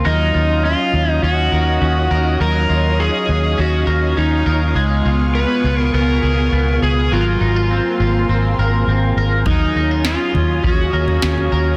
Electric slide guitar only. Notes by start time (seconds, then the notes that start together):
0.06 D#4
0.65 F4
1.11 D#4
1.24 F#4
2.42 A#4
3.00 G#4
3.60 F#4
4.18 D#4
5.35 B4
5.78 A#4
5.95 A#4
6.83 G#4
7.13 F4
9.47 D#4
10.06 F4
10.65 F#4